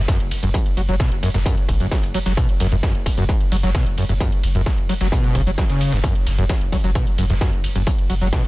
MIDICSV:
0, 0, Header, 1, 4, 480
1, 0, Start_track
1, 0, Tempo, 458015
1, 567, Time_signature, 4, 2, 24, 8
1, 8885, End_track
2, 0, Start_track
2, 0, Title_t, "Acid bass"
2, 0, Program_c, 0, 38
2, 87, Note_on_c, 0, 42, 83
2, 187, Note_off_c, 0, 42, 0
2, 448, Note_on_c, 0, 42, 77
2, 514, Note_off_c, 0, 42, 0
2, 567, Note_on_c, 0, 54, 83
2, 607, Note_off_c, 0, 54, 0
2, 807, Note_on_c, 0, 54, 99
2, 847, Note_off_c, 0, 54, 0
2, 929, Note_on_c, 0, 54, 106
2, 994, Note_off_c, 0, 54, 0
2, 1047, Note_on_c, 0, 47, 87
2, 1147, Note_off_c, 0, 47, 0
2, 1287, Note_on_c, 0, 42, 79
2, 1354, Note_off_c, 0, 42, 0
2, 1408, Note_on_c, 0, 42, 102
2, 1447, Note_off_c, 0, 42, 0
2, 1526, Note_on_c, 0, 42, 86
2, 1627, Note_off_c, 0, 42, 0
2, 1888, Note_on_c, 0, 42, 74
2, 1954, Note_off_c, 0, 42, 0
2, 2007, Note_on_c, 0, 54, 82
2, 2047, Note_off_c, 0, 54, 0
2, 2247, Note_on_c, 0, 54, 108
2, 2287, Note_off_c, 0, 54, 0
2, 2369, Note_on_c, 0, 54, 103
2, 2434, Note_off_c, 0, 54, 0
2, 2487, Note_on_c, 0, 47, 83
2, 2588, Note_off_c, 0, 47, 0
2, 2728, Note_on_c, 0, 42, 78
2, 2794, Note_off_c, 0, 42, 0
2, 2849, Note_on_c, 0, 42, 104
2, 2888, Note_off_c, 0, 42, 0
2, 2968, Note_on_c, 0, 42, 87
2, 3068, Note_off_c, 0, 42, 0
2, 3329, Note_on_c, 0, 42, 79
2, 3394, Note_off_c, 0, 42, 0
2, 3448, Note_on_c, 0, 54, 84
2, 3488, Note_off_c, 0, 54, 0
2, 3687, Note_on_c, 0, 54, 99
2, 3727, Note_off_c, 0, 54, 0
2, 3808, Note_on_c, 0, 54, 104
2, 3874, Note_off_c, 0, 54, 0
2, 3927, Note_on_c, 0, 47, 84
2, 4027, Note_off_c, 0, 47, 0
2, 4168, Note_on_c, 0, 42, 78
2, 4234, Note_off_c, 0, 42, 0
2, 4289, Note_on_c, 0, 42, 105
2, 4328, Note_off_c, 0, 42, 0
2, 4407, Note_on_c, 0, 42, 83
2, 4507, Note_off_c, 0, 42, 0
2, 4768, Note_on_c, 0, 42, 79
2, 4834, Note_off_c, 0, 42, 0
2, 4887, Note_on_c, 0, 54, 87
2, 4927, Note_off_c, 0, 54, 0
2, 5128, Note_on_c, 0, 54, 107
2, 5167, Note_off_c, 0, 54, 0
2, 5248, Note_on_c, 0, 54, 105
2, 5314, Note_off_c, 0, 54, 0
2, 5368, Note_on_c, 0, 47, 82
2, 5607, Note_on_c, 0, 49, 79
2, 5623, Note_off_c, 0, 47, 0
2, 5674, Note_off_c, 0, 49, 0
2, 5729, Note_on_c, 0, 54, 76
2, 5768, Note_off_c, 0, 54, 0
2, 5847, Note_on_c, 0, 54, 82
2, 5914, Note_off_c, 0, 54, 0
2, 5969, Note_on_c, 0, 49, 77
2, 6208, Note_on_c, 0, 42, 101
2, 6223, Note_off_c, 0, 49, 0
2, 6273, Note_off_c, 0, 42, 0
2, 6326, Note_on_c, 0, 42, 84
2, 6427, Note_off_c, 0, 42, 0
2, 6688, Note_on_c, 0, 42, 76
2, 6754, Note_off_c, 0, 42, 0
2, 6806, Note_on_c, 0, 54, 86
2, 6847, Note_off_c, 0, 54, 0
2, 7046, Note_on_c, 0, 54, 103
2, 7087, Note_off_c, 0, 54, 0
2, 7168, Note_on_c, 0, 54, 103
2, 7234, Note_off_c, 0, 54, 0
2, 7287, Note_on_c, 0, 47, 84
2, 7387, Note_off_c, 0, 47, 0
2, 7527, Note_on_c, 0, 42, 80
2, 7594, Note_off_c, 0, 42, 0
2, 7648, Note_on_c, 0, 42, 98
2, 7688, Note_off_c, 0, 42, 0
2, 7766, Note_on_c, 0, 42, 86
2, 7867, Note_off_c, 0, 42, 0
2, 8127, Note_on_c, 0, 42, 80
2, 8193, Note_off_c, 0, 42, 0
2, 8246, Note_on_c, 0, 54, 81
2, 8287, Note_off_c, 0, 54, 0
2, 8485, Note_on_c, 0, 54, 102
2, 8526, Note_off_c, 0, 54, 0
2, 8607, Note_on_c, 0, 54, 104
2, 8673, Note_off_c, 0, 54, 0
2, 8725, Note_on_c, 0, 47, 86
2, 8826, Note_off_c, 0, 47, 0
2, 8885, End_track
3, 0, Start_track
3, 0, Title_t, "Sub bass"
3, 0, Program_c, 1, 38
3, 209, Note_on_c, 1, 30, 82
3, 325, Note_off_c, 1, 30, 0
3, 449, Note_on_c, 1, 30, 82
3, 565, Note_off_c, 1, 30, 0
3, 807, Note_on_c, 1, 30, 102
3, 923, Note_off_c, 1, 30, 0
3, 929, Note_on_c, 1, 30, 86
3, 1045, Note_off_c, 1, 30, 0
3, 1169, Note_on_c, 1, 30, 74
3, 1285, Note_off_c, 1, 30, 0
3, 1409, Note_on_c, 1, 30, 84
3, 1525, Note_off_c, 1, 30, 0
3, 1767, Note_on_c, 1, 30, 102
3, 1886, Note_off_c, 1, 30, 0
3, 1890, Note_on_c, 1, 30, 83
3, 2006, Note_off_c, 1, 30, 0
3, 2130, Note_on_c, 1, 30, 78
3, 2245, Note_off_c, 1, 30, 0
3, 2369, Note_on_c, 1, 30, 84
3, 2485, Note_off_c, 1, 30, 0
3, 2727, Note_on_c, 1, 30, 103
3, 2843, Note_off_c, 1, 30, 0
3, 2849, Note_on_c, 1, 30, 88
3, 2965, Note_off_c, 1, 30, 0
3, 3089, Note_on_c, 1, 30, 77
3, 3205, Note_off_c, 1, 30, 0
3, 3329, Note_on_c, 1, 30, 85
3, 3445, Note_off_c, 1, 30, 0
3, 3687, Note_on_c, 1, 30, 101
3, 3801, Note_off_c, 1, 30, 0
3, 3808, Note_on_c, 1, 30, 87
3, 3924, Note_off_c, 1, 30, 0
3, 4049, Note_on_c, 1, 30, 78
3, 4165, Note_off_c, 1, 30, 0
3, 4289, Note_on_c, 1, 30, 82
3, 4405, Note_off_c, 1, 30, 0
3, 4647, Note_on_c, 1, 30, 103
3, 4763, Note_off_c, 1, 30, 0
3, 4769, Note_on_c, 1, 30, 87
3, 4885, Note_off_c, 1, 30, 0
3, 5008, Note_on_c, 1, 30, 77
3, 5125, Note_off_c, 1, 30, 0
3, 5248, Note_on_c, 1, 30, 85
3, 5365, Note_off_c, 1, 30, 0
3, 5607, Note_on_c, 1, 30, 103
3, 5722, Note_off_c, 1, 30, 0
3, 5728, Note_on_c, 1, 30, 87
3, 5845, Note_off_c, 1, 30, 0
3, 5968, Note_on_c, 1, 30, 79
3, 6085, Note_off_c, 1, 30, 0
3, 6208, Note_on_c, 1, 30, 79
3, 6325, Note_off_c, 1, 30, 0
3, 6566, Note_on_c, 1, 30, 104
3, 6681, Note_off_c, 1, 30, 0
3, 6688, Note_on_c, 1, 30, 86
3, 6804, Note_off_c, 1, 30, 0
3, 6928, Note_on_c, 1, 30, 78
3, 7044, Note_off_c, 1, 30, 0
3, 7168, Note_on_c, 1, 30, 84
3, 7285, Note_off_c, 1, 30, 0
3, 7527, Note_on_c, 1, 30, 103
3, 7641, Note_off_c, 1, 30, 0
3, 7648, Note_on_c, 1, 30, 83
3, 7764, Note_off_c, 1, 30, 0
3, 7888, Note_on_c, 1, 30, 81
3, 8004, Note_off_c, 1, 30, 0
3, 8129, Note_on_c, 1, 30, 83
3, 8245, Note_off_c, 1, 30, 0
3, 8487, Note_on_c, 1, 30, 103
3, 8602, Note_off_c, 1, 30, 0
3, 8608, Note_on_c, 1, 30, 87
3, 8725, Note_off_c, 1, 30, 0
3, 8849, Note_on_c, 1, 30, 79
3, 8885, Note_off_c, 1, 30, 0
3, 8885, End_track
4, 0, Start_track
4, 0, Title_t, "Drums"
4, 87, Note_on_c, 9, 36, 121
4, 87, Note_on_c, 9, 38, 120
4, 87, Note_on_c, 9, 54, 93
4, 89, Note_on_c, 9, 42, 97
4, 192, Note_off_c, 9, 36, 0
4, 192, Note_off_c, 9, 38, 0
4, 192, Note_off_c, 9, 54, 0
4, 193, Note_off_c, 9, 42, 0
4, 210, Note_on_c, 9, 42, 57
4, 315, Note_off_c, 9, 42, 0
4, 327, Note_on_c, 9, 54, 70
4, 329, Note_on_c, 9, 46, 109
4, 329, Note_on_c, 9, 51, 86
4, 432, Note_off_c, 9, 54, 0
4, 434, Note_off_c, 9, 46, 0
4, 434, Note_off_c, 9, 51, 0
4, 450, Note_on_c, 9, 42, 56
4, 555, Note_off_c, 9, 42, 0
4, 567, Note_on_c, 9, 36, 127
4, 567, Note_on_c, 9, 54, 94
4, 569, Note_on_c, 9, 42, 96
4, 672, Note_off_c, 9, 36, 0
4, 672, Note_off_c, 9, 54, 0
4, 674, Note_off_c, 9, 42, 0
4, 690, Note_on_c, 9, 42, 59
4, 795, Note_off_c, 9, 42, 0
4, 807, Note_on_c, 9, 54, 67
4, 809, Note_on_c, 9, 46, 118
4, 809, Note_on_c, 9, 51, 84
4, 912, Note_off_c, 9, 54, 0
4, 914, Note_off_c, 9, 46, 0
4, 914, Note_off_c, 9, 51, 0
4, 930, Note_on_c, 9, 42, 55
4, 1035, Note_off_c, 9, 42, 0
4, 1047, Note_on_c, 9, 36, 122
4, 1047, Note_on_c, 9, 38, 122
4, 1047, Note_on_c, 9, 54, 88
4, 1049, Note_on_c, 9, 42, 102
4, 1152, Note_off_c, 9, 36, 0
4, 1152, Note_off_c, 9, 38, 0
4, 1152, Note_off_c, 9, 54, 0
4, 1154, Note_off_c, 9, 42, 0
4, 1170, Note_on_c, 9, 42, 57
4, 1275, Note_off_c, 9, 42, 0
4, 1287, Note_on_c, 9, 54, 73
4, 1288, Note_on_c, 9, 46, 110
4, 1288, Note_on_c, 9, 51, 81
4, 1392, Note_off_c, 9, 54, 0
4, 1393, Note_off_c, 9, 46, 0
4, 1393, Note_off_c, 9, 51, 0
4, 1409, Note_on_c, 9, 38, 54
4, 1409, Note_on_c, 9, 42, 57
4, 1514, Note_off_c, 9, 38, 0
4, 1514, Note_off_c, 9, 42, 0
4, 1527, Note_on_c, 9, 36, 126
4, 1527, Note_on_c, 9, 42, 99
4, 1528, Note_on_c, 9, 54, 94
4, 1632, Note_off_c, 9, 36, 0
4, 1632, Note_off_c, 9, 42, 0
4, 1632, Note_off_c, 9, 54, 0
4, 1649, Note_on_c, 9, 42, 57
4, 1754, Note_off_c, 9, 42, 0
4, 1767, Note_on_c, 9, 36, 66
4, 1767, Note_on_c, 9, 54, 70
4, 1768, Note_on_c, 9, 46, 114
4, 1768, Note_on_c, 9, 51, 83
4, 1872, Note_off_c, 9, 36, 0
4, 1872, Note_off_c, 9, 54, 0
4, 1873, Note_off_c, 9, 46, 0
4, 1873, Note_off_c, 9, 51, 0
4, 1888, Note_on_c, 9, 42, 57
4, 1993, Note_off_c, 9, 42, 0
4, 2007, Note_on_c, 9, 36, 127
4, 2007, Note_on_c, 9, 42, 97
4, 2008, Note_on_c, 9, 38, 124
4, 2008, Note_on_c, 9, 54, 92
4, 2112, Note_off_c, 9, 36, 0
4, 2112, Note_off_c, 9, 42, 0
4, 2113, Note_off_c, 9, 38, 0
4, 2113, Note_off_c, 9, 54, 0
4, 2128, Note_on_c, 9, 42, 59
4, 2129, Note_off_c, 9, 42, 0
4, 2129, Note_on_c, 9, 42, 46
4, 2233, Note_off_c, 9, 42, 0
4, 2247, Note_on_c, 9, 46, 112
4, 2247, Note_on_c, 9, 51, 86
4, 2247, Note_on_c, 9, 54, 71
4, 2351, Note_off_c, 9, 46, 0
4, 2351, Note_off_c, 9, 51, 0
4, 2352, Note_off_c, 9, 54, 0
4, 2369, Note_on_c, 9, 38, 60
4, 2369, Note_on_c, 9, 46, 68
4, 2473, Note_off_c, 9, 38, 0
4, 2473, Note_off_c, 9, 46, 0
4, 2487, Note_on_c, 9, 36, 127
4, 2487, Note_on_c, 9, 42, 97
4, 2487, Note_on_c, 9, 54, 92
4, 2592, Note_off_c, 9, 36, 0
4, 2592, Note_off_c, 9, 42, 0
4, 2592, Note_off_c, 9, 54, 0
4, 2609, Note_on_c, 9, 42, 56
4, 2714, Note_off_c, 9, 42, 0
4, 2726, Note_on_c, 9, 46, 117
4, 2726, Note_on_c, 9, 51, 79
4, 2728, Note_on_c, 9, 38, 37
4, 2728, Note_on_c, 9, 54, 69
4, 2831, Note_off_c, 9, 46, 0
4, 2831, Note_off_c, 9, 51, 0
4, 2833, Note_off_c, 9, 38, 0
4, 2833, Note_off_c, 9, 54, 0
4, 2849, Note_on_c, 9, 42, 54
4, 2954, Note_off_c, 9, 42, 0
4, 2967, Note_on_c, 9, 36, 127
4, 2968, Note_on_c, 9, 38, 119
4, 2968, Note_on_c, 9, 42, 98
4, 2968, Note_on_c, 9, 54, 90
4, 3072, Note_off_c, 9, 36, 0
4, 3072, Note_off_c, 9, 38, 0
4, 3072, Note_off_c, 9, 42, 0
4, 3072, Note_off_c, 9, 54, 0
4, 3089, Note_on_c, 9, 42, 56
4, 3194, Note_off_c, 9, 42, 0
4, 3207, Note_on_c, 9, 36, 66
4, 3208, Note_on_c, 9, 46, 110
4, 3208, Note_on_c, 9, 51, 79
4, 3208, Note_on_c, 9, 54, 74
4, 3312, Note_off_c, 9, 36, 0
4, 3312, Note_off_c, 9, 46, 0
4, 3312, Note_off_c, 9, 51, 0
4, 3312, Note_off_c, 9, 54, 0
4, 3328, Note_on_c, 9, 42, 55
4, 3433, Note_off_c, 9, 42, 0
4, 3447, Note_on_c, 9, 36, 127
4, 3447, Note_on_c, 9, 42, 91
4, 3448, Note_on_c, 9, 54, 93
4, 3551, Note_off_c, 9, 36, 0
4, 3552, Note_off_c, 9, 42, 0
4, 3552, Note_off_c, 9, 54, 0
4, 3569, Note_on_c, 9, 42, 54
4, 3674, Note_off_c, 9, 42, 0
4, 3687, Note_on_c, 9, 46, 113
4, 3687, Note_on_c, 9, 51, 79
4, 3687, Note_on_c, 9, 54, 70
4, 3792, Note_off_c, 9, 46, 0
4, 3792, Note_off_c, 9, 51, 0
4, 3792, Note_off_c, 9, 54, 0
4, 3809, Note_on_c, 9, 38, 40
4, 3809, Note_on_c, 9, 42, 56
4, 3913, Note_off_c, 9, 42, 0
4, 3914, Note_off_c, 9, 38, 0
4, 3927, Note_on_c, 9, 36, 127
4, 3927, Note_on_c, 9, 38, 126
4, 3927, Note_on_c, 9, 42, 97
4, 3927, Note_on_c, 9, 54, 95
4, 4032, Note_off_c, 9, 36, 0
4, 4032, Note_off_c, 9, 38, 0
4, 4032, Note_off_c, 9, 42, 0
4, 4032, Note_off_c, 9, 54, 0
4, 4049, Note_on_c, 9, 42, 57
4, 4154, Note_off_c, 9, 42, 0
4, 4167, Note_on_c, 9, 46, 121
4, 4167, Note_on_c, 9, 51, 80
4, 4167, Note_on_c, 9, 54, 70
4, 4272, Note_off_c, 9, 46, 0
4, 4272, Note_off_c, 9, 51, 0
4, 4272, Note_off_c, 9, 54, 0
4, 4289, Note_on_c, 9, 42, 57
4, 4394, Note_off_c, 9, 42, 0
4, 4407, Note_on_c, 9, 36, 127
4, 4407, Note_on_c, 9, 42, 93
4, 4407, Note_on_c, 9, 54, 92
4, 4511, Note_off_c, 9, 36, 0
4, 4512, Note_off_c, 9, 42, 0
4, 4512, Note_off_c, 9, 54, 0
4, 4529, Note_on_c, 9, 42, 52
4, 4634, Note_off_c, 9, 42, 0
4, 4647, Note_on_c, 9, 54, 68
4, 4648, Note_on_c, 9, 46, 114
4, 4648, Note_on_c, 9, 51, 78
4, 4752, Note_off_c, 9, 54, 0
4, 4753, Note_off_c, 9, 46, 0
4, 4753, Note_off_c, 9, 51, 0
4, 4769, Note_on_c, 9, 42, 51
4, 4874, Note_off_c, 9, 42, 0
4, 4887, Note_on_c, 9, 36, 127
4, 4887, Note_on_c, 9, 38, 120
4, 4887, Note_on_c, 9, 42, 97
4, 4887, Note_on_c, 9, 54, 90
4, 4991, Note_off_c, 9, 36, 0
4, 4991, Note_off_c, 9, 38, 0
4, 4991, Note_off_c, 9, 54, 0
4, 4992, Note_off_c, 9, 42, 0
4, 5009, Note_on_c, 9, 42, 56
4, 5114, Note_off_c, 9, 42, 0
4, 5127, Note_on_c, 9, 46, 112
4, 5127, Note_on_c, 9, 51, 76
4, 5127, Note_on_c, 9, 54, 72
4, 5231, Note_off_c, 9, 54, 0
4, 5232, Note_off_c, 9, 46, 0
4, 5232, Note_off_c, 9, 51, 0
4, 5248, Note_on_c, 9, 38, 55
4, 5249, Note_on_c, 9, 42, 56
4, 5353, Note_off_c, 9, 38, 0
4, 5354, Note_off_c, 9, 42, 0
4, 5367, Note_on_c, 9, 36, 127
4, 5367, Note_on_c, 9, 54, 93
4, 5368, Note_on_c, 9, 42, 91
4, 5472, Note_off_c, 9, 36, 0
4, 5472, Note_off_c, 9, 54, 0
4, 5473, Note_off_c, 9, 42, 0
4, 5489, Note_on_c, 9, 42, 54
4, 5594, Note_off_c, 9, 42, 0
4, 5607, Note_on_c, 9, 36, 66
4, 5607, Note_on_c, 9, 54, 72
4, 5608, Note_on_c, 9, 46, 112
4, 5608, Note_on_c, 9, 51, 74
4, 5712, Note_off_c, 9, 36, 0
4, 5712, Note_off_c, 9, 54, 0
4, 5713, Note_off_c, 9, 46, 0
4, 5713, Note_off_c, 9, 51, 0
4, 5729, Note_on_c, 9, 42, 53
4, 5834, Note_off_c, 9, 42, 0
4, 5847, Note_on_c, 9, 36, 127
4, 5847, Note_on_c, 9, 38, 122
4, 5847, Note_on_c, 9, 54, 93
4, 5848, Note_on_c, 9, 42, 91
4, 5951, Note_off_c, 9, 38, 0
4, 5951, Note_off_c, 9, 54, 0
4, 5952, Note_off_c, 9, 36, 0
4, 5952, Note_off_c, 9, 42, 0
4, 5968, Note_on_c, 9, 42, 45
4, 5969, Note_off_c, 9, 42, 0
4, 5969, Note_on_c, 9, 42, 54
4, 6074, Note_off_c, 9, 42, 0
4, 6087, Note_on_c, 9, 46, 114
4, 6087, Note_on_c, 9, 51, 78
4, 6087, Note_on_c, 9, 54, 70
4, 6192, Note_off_c, 9, 46, 0
4, 6192, Note_off_c, 9, 51, 0
4, 6192, Note_off_c, 9, 54, 0
4, 6208, Note_on_c, 9, 38, 60
4, 6209, Note_on_c, 9, 46, 67
4, 6313, Note_off_c, 9, 38, 0
4, 6314, Note_off_c, 9, 46, 0
4, 6327, Note_on_c, 9, 36, 122
4, 6327, Note_on_c, 9, 42, 88
4, 6327, Note_on_c, 9, 54, 94
4, 6431, Note_off_c, 9, 54, 0
4, 6432, Note_off_c, 9, 36, 0
4, 6432, Note_off_c, 9, 42, 0
4, 6448, Note_on_c, 9, 42, 53
4, 6553, Note_off_c, 9, 42, 0
4, 6567, Note_on_c, 9, 38, 37
4, 6567, Note_on_c, 9, 46, 109
4, 6567, Note_on_c, 9, 51, 77
4, 6567, Note_on_c, 9, 54, 68
4, 6672, Note_off_c, 9, 38, 0
4, 6672, Note_off_c, 9, 46, 0
4, 6672, Note_off_c, 9, 51, 0
4, 6672, Note_off_c, 9, 54, 0
4, 6689, Note_on_c, 9, 42, 48
4, 6794, Note_off_c, 9, 42, 0
4, 6806, Note_on_c, 9, 38, 118
4, 6806, Note_on_c, 9, 54, 91
4, 6807, Note_on_c, 9, 36, 118
4, 6807, Note_on_c, 9, 42, 90
4, 6911, Note_off_c, 9, 38, 0
4, 6911, Note_off_c, 9, 54, 0
4, 6912, Note_off_c, 9, 36, 0
4, 6912, Note_off_c, 9, 42, 0
4, 6929, Note_on_c, 9, 42, 52
4, 7034, Note_off_c, 9, 42, 0
4, 7047, Note_on_c, 9, 36, 63
4, 7047, Note_on_c, 9, 46, 110
4, 7047, Note_on_c, 9, 51, 75
4, 7047, Note_on_c, 9, 54, 70
4, 7152, Note_off_c, 9, 36, 0
4, 7152, Note_off_c, 9, 46, 0
4, 7152, Note_off_c, 9, 51, 0
4, 7152, Note_off_c, 9, 54, 0
4, 7169, Note_on_c, 9, 42, 52
4, 7273, Note_off_c, 9, 42, 0
4, 7287, Note_on_c, 9, 36, 125
4, 7287, Note_on_c, 9, 42, 88
4, 7287, Note_on_c, 9, 54, 94
4, 7391, Note_off_c, 9, 42, 0
4, 7392, Note_off_c, 9, 36, 0
4, 7392, Note_off_c, 9, 54, 0
4, 7409, Note_on_c, 9, 42, 53
4, 7514, Note_off_c, 9, 42, 0
4, 7527, Note_on_c, 9, 46, 110
4, 7527, Note_on_c, 9, 51, 78
4, 7527, Note_on_c, 9, 54, 71
4, 7632, Note_off_c, 9, 46, 0
4, 7632, Note_off_c, 9, 51, 0
4, 7632, Note_off_c, 9, 54, 0
4, 7648, Note_on_c, 9, 42, 50
4, 7649, Note_on_c, 9, 38, 40
4, 7753, Note_off_c, 9, 38, 0
4, 7753, Note_off_c, 9, 42, 0
4, 7766, Note_on_c, 9, 42, 90
4, 7767, Note_on_c, 9, 36, 126
4, 7767, Note_on_c, 9, 38, 125
4, 7767, Note_on_c, 9, 54, 91
4, 7871, Note_off_c, 9, 42, 0
4, 7872, Note_off_c, 9, 36, 0
4, 7872, Note_off_c, 9, 38, 0
4, 7872, Note_off_c, 9, 54, 0
4, 7889, Note_on_c, 9, 42, 52
4, 7994, Note_off_c, 9, 42, 0
4, 8006, Note_on_c, 9, 46, 110
4, 8006, Note_on_c, 9, 51, 79
4, 8008, Note_on_c, 9, 54, 68
4, 8111, Note_off_c, 9, 46, 0
4, 8111, Note_off_c, 9, 51, 0
4, 8113, Note_off_c, 9, 54, 0
4, 8128, Note_on_c, 9, 42, 51
4, 8233, Note_off_c, 9, 42, 0
4, 8246, Note_on_c, 9, 42, 91
4, 8247, Note_on_c, 9, 36, 121
4, 8248, Note_on_c, 9, 54, 94
4, 8351, Note_off_c, 9, 42, 0
4, 8352, Note_off_c, 9, 36, 0
4, 8353, Note_off_c, 9, 54, 0
4, 8368, Note_on_c, 9, 42, 52
4, 8473, Note_off_c, 9, 42, 0
4, 8486, Note_on_c, 9, 46, 107
4, 8486, Note_on_c, 9, 51, 82
4, 8488, Note_on_c, 9, 54, 71
4, 8591, Note_off_c, 9, 46, 0
4, 8591, Note_off_c, 9, 51, 0
4, 8592, Note_off_c, 9, 54, 0
4, 8609, Note_on_c, 9, 42, 49
4, 8713, Note_off_c, 9, 42, 0
4, 8727, Note_on_c, 9, 36, 119
4, 8727, Note_on_c, 9, 38, 115
4, 8727, Note_on_c, 9, 42, 91
4, 8727, Note_on_c, 9, 54, 90
4, 8832, Note_off_c, 9, 36, 0
4, 8832, Note_off_c, 9, 38, 0
4, 8832, Note_off_c, 9, 42, 0
4, 8832, Note_off_c, 9, 54, 0
4, 8848, Note_on_c, 9, 42, 50
4, 8885, Note_off_c, 9, 42, 0
4, 8885, End_track
0, 0, End_of_file